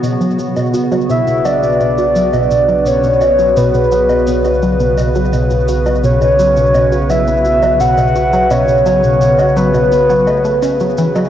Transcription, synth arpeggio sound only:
0.03 0.17 B2 medium
0.21 0.38 F#3 medium
0.39 0.55 B2 medium
0.56 0.73 B2 medium
0.74 0.82 F#4 medium
0.92 1.05 F#3 loud
1.09 1.23 B2 medium
1.27 1.40 B2 medium
1.45 1.62 F#3 medium
1.62 1.79 B2 medium
1.80 1.97 B2 medium
1.98 2.06 F#4 medium
2.15 2.29 F#3 medium
2.33 2.46 B2 medium
2.50 2.64 B2 medium
2.68 2.85 F#3 loud
2.86 3.02 B2 medium
3.04 3.21 B2 medium
3.21 3.29 F#4 medium
3.39 3.52 F#3 loud
3.57 3.70 B2 medium
3.74 3.87 B2 medium
3.92 4.09 F#3 loud
4.10 4.26 B2 medium
4.27 4.44 B2 medium
4.45 4.53 F#4 medium
4.63 4.76 F#3 medium
4.80 4.93 B2 loud
4.98 5.11 B2 medium
5.16 5.33 F#3 medium
5.33 5.50 B2 medium
5.51 5.68 B2 medium
5.69 5.77 F#4 medium
5.86 5.99 F#3 medium
6.04 6.17 B2 medium
6.22 6.35 B2 medium
6.39 6.56 F#3 medium
6.57 6.73 B2 medium
6.75 6.91 B2 medium
6.92 7.00 F#4 medium
7.10 7.23 F#3 medium
7.28 7.41 B2 loud
7.45 7.58 B2 medium
7.63 7.80 F#3 loud
7.80 7.96 B2 medium
7.98 8.15 B2 medium
8.16 8.24 F#4 medium
8.33 8.46 F#3 loud
8.51 8.64 B2 loud
8.69 8.82 B2 medium
8.86 9.03 F#3 medium
9.04 9.20 B2 medium
9.21 9.38 B2 medium
9.39 9.47 F#4 medium
9.57 9.70 F#3 loud
9.74 9.88 B2 medium
9.92 10.05 B2 medium
10.10 10.27 F#3 loud
10.27 10.41 A3 medium
10.45 10.58 A3 medium
10.63 10.76 C#4 medium
10.81 10.94 F#3 medium
10.98 11.06 E3 loud
11.16 11.24 F#3 loud

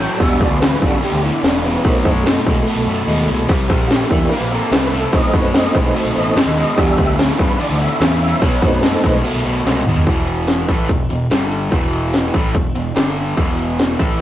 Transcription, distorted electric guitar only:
0.00 0.18 A2 medium
0.00 0.18 F#3 medium
0.20 0.39 E2 medium
0.20 0.39 B2 medium
0.40 0.59 E2 medium
0.40 0.59 B2 medium
0.62 0.80 E2 medium
0.62 0.80 C#3 medium
0.82 1.00 E2 medium
0.82 1.00 C#3 medium
1.02 1.21 E2 medium
1.02 1.21 D3 loud
1.22 1.41 E2 medium
1.22 1.42 D3 medium
1.43 1.61 E2 medium
1.43 1.62 C#3 medium
1.64 1.82 E2 medium
1.64 1.82 C#3 medium
1.84 2.03 B2 medium
1.84 2.03 F#3 medium
2.05 2.24 B2 medium
2.05 2.24 F#3 medium
2.26 2.44 B2 medium
2.26 2.44 G#3 medium
2.47 2.65 B2 medium
2.47 2.65 G#3 medium
2.67 2.85 B2 medium
2.67 2.85 A3 medium
2.88 3.06 B2 medium
2.88 3.06 A3 medium
3.08 3.26 B2 medium
3.08 3.26 G#3 medium
3.29 3.47 B2 medium
3.29 3.47 G#3 medium
3.48 3.67 C3 medium
3.48 3.67 G3 medium
3.69 3.88 C3 medium
3.69 3.88 G3 medium
3.90 4.08 C3 medium
3.90 4.08 A3 medium
4.11 4.29 C3 medium
4.11 4.29 A3 medium
4.32 4.50 C3 medium
4.32 4.50 A#3 loud
4.52 4.70 C3 medium
4.52 4.70 A#3 medium
4.71 4.90 C3 medium
4.71 4.90 A3 medium
4.92 5.11 C3 medium
4.92 5.11 A3 medium
5.13 5.31 B2 medium
5.13 5.31 F#3 loud
5.34 5.52 B2 medium
5.34 5.52 F#3 medium
5.54 5.73 B2 medium
5.54 5.73 G#3 loud
5.75 5.93 B2 medium
5.75 5.93 G#3 medium
5.95 6.13 B2 medium
5.95 6.13 A3 medium
6.15 6.34 B2 medium
6.15 6.34 A3 medium
6.36 6.54 B2 medium
6.36 6.55 G#3 loud
6.56 6.75 B2 medium
6.56 6.75 G#3 medium
6.76 6.95 E2 medium
6.76 6.95 B2 loud
6.96 7.15 E2 medium
6.96 7.16 B2 medium
7.17 7.36 E2 medium
7.17 7.36 C#3 medium
7.38 7.57 E2 medium
7.38 7.57 C#3 medium
7.58 7.77 E2 medium
7.58 7.78 D3 loud
7.79 7.98 E2 medium
7.79 7.98 D3 medium
8.01 8.19 E2 medium
8.01 8.19 C#3 loud
8.21 8.39 E2 medium
8.21 8.40 C#3 medium
8.41 8.60 B2 medium
8.41 8.60 F#3 loud
8.62 8.80 B2 medium
8.62 8.81 F#3 loud
8.83 9.01 B2 medium
8.83 9.01 G#3 loud
9.04 9.22 B2 medium
9.04 9.22 G#3 loud
9.24 9.42 B2 medium
9.24 9.43 A3 loud
9.45 9.63 B2 medium
9.45 9.63 A3 medium
9.66 9.84 B2 loud
9.66 9.84 G#3 loud
9.88 10.05 B2 medium
9.88 10.05 G#3 medium
10.07 10.68 E2 medium
10.07 10.68 B2 medium
10.07 10.68 E3 loud
10.69 10.88 A2 medium
10.69 10.88 E3 loud
10.69 10.89 A3 medium
10.89 11.05 E2 medium
10.89 11.06 B2 medium
11.09 11.26 E2 medium
11.09 11.26 B2 medium
11.30 11.71 G2 medium
11.30 11.71 D3 medium
11.30 11.71 G3 loud
11.71 12.32 E2 medium
11.71 12.33 B2 loud
11.71 12.33 E3 loud
12.34 12.53 A2 medium
12.34 12.54 E3 medium
12.34 12.54 A3 medium
12.55 12.71 E2 medium
12.55 12.71 B2 medium
12.75 12.91 E2 medium
12.75 12.91 B2 medium
12.95 13.36 G2 medium
12.95 13.36 D3 loud
12.95 13.36 G3 loud
13.37 13.98 E2 loud
13.37 13.98 B2 loud
13.37 13.98 E3 loud
13.98 14.18 A2 medium
13.98 14.19 E3 loud
13.98 14.19 A3 loud

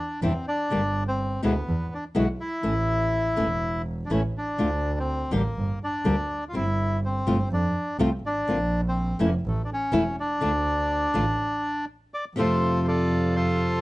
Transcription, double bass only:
0.22 0.42 E2 medium
0.71 1.40 G1 medium
1.43 1.64 D2 medium
1.67 1.88 E2 medium
2.16 2.36 B1 medium
2.63 3.33 A1 medium
3.36 4.06 E1 medium
4.10 4.31 A1 medium
4.58 5.28 D2 medium
5.31 5.52 A1 medium
5.56 5.77 G1 medium
6.05 6.26 D2 medium
6.54 7.23 G1 medium
7.26 7.47 G1 medium
7.50 7.71 F2 medium
7.99 8.19 C2 medium
8.24 8.46 G#1 soft
8.47 9.16 A#1 medium
9.20 9.40 F1 medium
9.44 9.64 A1 medium
9.93 10.13 E1 medium
10.41 11.10 D2 medium
11.14 11.35 A1 medium
12.36 13.81 F2 medium

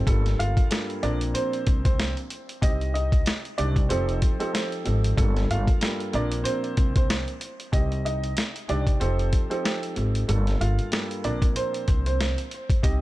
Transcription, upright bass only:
0.07 0.36 G1 loud
0.40 0.56 G1 medium
1.03 1.32 A#1 loud
1.67 2.13 C2 loud
2.63 3.22 C2 loud
3.59 3.88 C2 loud
3.91 4.20 F1 loud
4.87 5.15 G#1 loud
5.18 5.47 G1 loud
5.50 5.67 G1 medium
6.14 6.43 A#1 loud
6.78 7.24 C2 loud
7.73 8.33 C2 loud
8.69 8.98 C2 medium
9.01 9.30 F1 loud
9.97 10.26 G#1 medium
10.29 10.58 G1 loud
10.61 10.77 G1 medium
11.25 11.54 A#1 loud
11.88 12.34 C2 medium
12.84 13.01 C2 loud

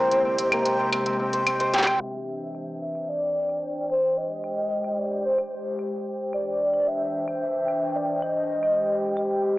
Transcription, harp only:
0.00 0.52 A#3 medium
0.00 0.11 C4 medium
0.00 0.65 C5 medium
0.11 0.25 C4 medium
0.25 0.38 C4 medium
0.38 0.79 C4 medium
0.52 3.74 A#3 medium
0.66 1.33 C5 medium
0.79 0.92 C4 medium
0.93 1.06 C4 medium
1.06 1.19 C4 medium
1.20 1.46 C4 medium
1.33 1.60 C5 medium
1.47 1.87 C4 medium
1.60 3.58 C5 loud
1.74 4.09 G4 medium
1.87 4.87 C4 loud

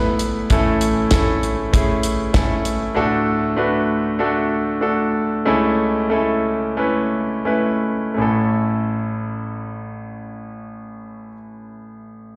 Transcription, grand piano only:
0.00 0.46 E2 medium
0.00 0.46 B2 medium
0.00 0.50 A3 medium
0.00 0.53 B3 medium
0.00 0.52 E4 medium
0.00 0.52 A4 loud
0.00 0.36 B4 medium
0.50 2.92 A2 medium
0.50 2.92 E3 medium
0.50 0.97 A3 medium
0.50 0.97 C#4 medium
0.50 0.97 E4 medium
0.50 0.98 A4 loud
1.11 1.58 A3 medium
1.11 1.58 C#4 medium
1.11 1.58 E4 medium
1.11 1.59 A4 medium
1.73 2.19 A3 medium
1.73 2.19 C#4 medium
1.73 2.20 E4 medium
1.73 2.20 G#4 medium
2.33 2.80 A3 medium
2.33 2.80 C#4 medium
2.33 2.81 E4 medium
2.33 2.81 A4 medium
2.94 5.42 D2 medium
2.94 5.42 A2 medium
2.94 3.41 A3 medium
2.94 3.42 D4 medium
2.94 3.42 F#4 medium
2.94 3.42 A4 medium
3.56 4.04 A3 medium
3.56 4.04 D4 medium
3.56 4.04 F#4 medium
3.56 4.04 B4 medium
4.19 4.66 A3 medium
4.19 4.67 D4 medium
4.19 4.67 F#4 medium
4.19 4.67 A4 medium
4.81 5.29 A3 medium
4.81 5.30 D4 medium
4.81 5.30 F#4 medium
4.81 5.30 A4 medium
5.45 8.14 C#2 medium
5.45 8.14 C#3 medium
5.45 5.95 A3 medium
5.45 5.95 C#4 medium
5.45 5.95 E4 medium
5.45 5.96 A4 medium
6.10 6.61 A3 medium
6.10 6.61 C#4 medium
6.10 6.61 E4 medium
6.10 6.62 A4 medium
6.77 7.29 A3 medium
6.77 7.29 C#4 medium
6.77 7.30 E4 medium
6.77 7.30 B4 medium
7.45 7.99 A3 medium
7.45 7.99 C#4 medium
7.45 8.00 E4 medium
7.45 8.00 B4 medium
8.14 11.32 A1 medium
8.14 11.28 A3 medium
8.14 11.30 C#4 soft
8.19 11.32 E4 medium
8.19 11.35 A4 medium

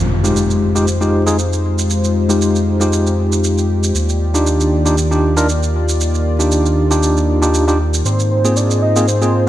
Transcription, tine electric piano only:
0.24 0.72 G#3 medium
0.24 0.72 D#4 medium
0.24 0.72 F4 medium
0.24 0.72 G4 medium
0.75 0.85 G#3 medium
0.75 0.85 D#4 medium
0.75 0.85 F4 medium
0.75 0.85 G4 medium
1.01 1.23 G#3 medium
1.01 1.23 D#4 medium
1.01 1.23 F4 medium
1.01 1.23 G4 medium
1.26 1.36 G#3 medium
1.26 1.36 D#4 medium
1.26 1.36 F4 medium
1.26 1.36 G#4 medium
2.29 2.77 G#3 medium
2.29 2.77 D#4 medium
2.29 2.77 F4 medium
2.29 2.77 G4 medium
2.80 3.93 G#3 medium
2.80 3.93 D#4 medium
2.80 3.94 F4 medium
2.80 3.94 G4 medium
4.34 4.82 D4 medium
4.34 4.82 D#4 medium
4.34 4.82 F4 medium
4.34 4.82 G4 medium
4.85 4.95 D4 medium
4.85 4.95 D#4 medium
4.85 4.95 F4 medium
4.85 4.95 G4 medium
5.11 5.33 D4 medium
5.11 5.33 D#4 medium
5.11 5.34 F4 medium
5.11 5.34 G4 medium
5.37 5.46 D4 medium
5.37 5.46 D#4 medium
5.37 5.46 F4 medium
5.37 5.46 A#4 loud
6.39 6.87 D4 medium
6.39 6.87 D#4 medium
6.39 6.87 F4 medium
6.39 6.88 G4 medium
6.90 7.39 D4 medium
6.90 7.39 D#4 medium
6.90 7.39 F4 medium
6.90 7.39 G4 medium
7.42 7.64 D4 medium
7.42 7.64 D#4 medium
7.42 7.64 F4 medium
7.42 7.64 G4 medium
7.67 7.77 D4 medium
7.67 7.77 D#4 medium
7.67 7.77 F4 medium
7.67 7.77 G4 medium
8.44 8.92 A#3 medium
8.44 8.92 C4 medium
8.44 8.93 F4 medium
8.44 8.93 G#4 medium
8.96 9.05 A#3 medium
8.96 9.05 C4 medium
8.96 9.05 F4 medium
8.96 9.05 G#4 medium
9.21 9.44 A#3 medium
9.21 9.44 C4 medium
9.21 9.44 F4 medium
9.21 9.44 G#4 medium

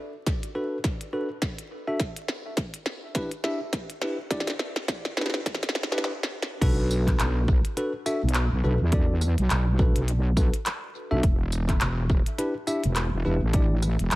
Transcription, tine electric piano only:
0.55 0.77 D4 medium
0.55 0.77 F#4 medium
0.55 0.77 A4 medium
0.55 0.77 B4 medium
1.13 1.28 D4 medium
1.13 1.28 F#4 medium
1.13 1.28 A4 medium
1.13 1.28 B4 medium
1.87 1.98 D4 medium
1.87 1.98 F#4 medium
1.87 1.98 A4 medium
1.87 1.98 E5 medium
3.15 3.30 D4 medium
3.15 3.30 E4 medium
3.15 3.30 G4 medium
3.15 3.30 B4 loud
3.44 3.59 D4 medium
3.44 3.59 E4 medium
3.44 3.59 G4 medium
3.44 3.59 E5 loud
4.02 4.17 D4 medium
4.02 4.17 E4 medium
4.02 4.17 G4 medium
4.02 4.17 B4 medium
4.31 4.52 D4 medium
4.31 4.52 E4 medium
4.31 4.52 G4 medium
4.31 4.52 D5 loud
5.17 5.39 D4 medium
5.17 5.39 E4 medium
5.17 5.39 G4 medium
5.17 5.39 B4 medium
5.92 6.11 D4 medium
5.92 6.11 E4 medium
5.92 6.11 G4 medium
5.92 6.11 B4 medium
6.61 7.48 D4 loud
6.61 7.48 F#4 medium
6.61 7.48 A4 medium
6.61 7.48 B4 loud
7.77 7.92 D4 medium
7.77 7.92 F#4 medium
7.77 7.92 A4 medium
7.77 7.92 B4 loud
8.06 8.21 D4 medium
8.06 8.21 F#4 medium
8.06 8.21 A4 medium
8.06 8.21 E5 loud
8.64 8.78 D4 medium
8.64 8.78 F#4 medium
8.64 8.78 A4 medium
8.64 8.78 B4 medium
8.93 9.14 D4 medium
8.93 9.14 F#4 medium
8.93 9.14 A4 medium
8.93 9.14 D5 loud
9.79 10.01 D4 medium
9.79 10.01 F#4 medium
9.79 10.01 A4 medium
9.79 10.01 B4 medium
10.37 10.51 D4 medium
10.37 10.51 F#4 medium
10.37 10.51 A4 medium
10.37 10.51 B4 medium
11.11 11.22 D4 medium
11.11 11.22 F#4 medium
11.11 11.22 A4 medium
11.11 11.22 E5 loud
12.38 12.53 D4 medium
12.38 12.53 E4 medium
12.38 12.53 G4 medium
12.38 12.53 B4 medium
12.67 12.82 D4 medium
12.67 12.82 E4 medium
12.67 12.82 G4 medium
12.67 12.82 E5 loud
13.25 13.40 D4 medium
13.25 13.40 E4 medium
13.25 13.40 G4 medium
13.25 13.40 B4 medium
13.54 13.76 D4 medium
13.54 13.76 E4 medium
13.54 13.76 G4 medium
13.54 13.76 D5 medium

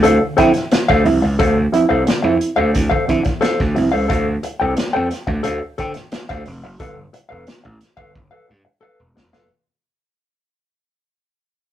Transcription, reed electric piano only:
0.04 0.11 C4 soft
0.04 0.11 E4 soft
0.21 0.33 D3 medium
0.38 0.50 F3 medium
0.38 0.50 C4 medium
0.38 0.50 E4 loud
0.71 0.79 C4 soft
0.71 0.79 E4 soft
0.89 1.00 D3 medium
1.05 1.17 F3 medium
1.05 1.17 C4 medium
1.05 1.17 E4 medium
1.39 1.51 D3 medium
1.73 1.84 F3 medium
1.73 1.85 C4 medium
1.73 1.85 E4 medium
2.07 2.19 D3 medium
2.24 2.35 F3 medium
2.24 2.36 C4 medium
2.24 2.36 E4 medium
2.41 2.48 C4 soft
2.41 2.48 E4 soft
2.75 2.82 C4 soft
2.75 2.82 E4 medium
2.92 3.03 D3 medium
3.08 3.20 F3 medium
3.08 3.20 C4 medium
3.08 3.20 E4 medium
3.42 3.49 C4 soft
3.42 3.49 E4 soft
3.59 3.71 D3 medium
3.75 3.87 F3 medium
3.75 3.87 C4 medium
3.75 3.88 E4 medium

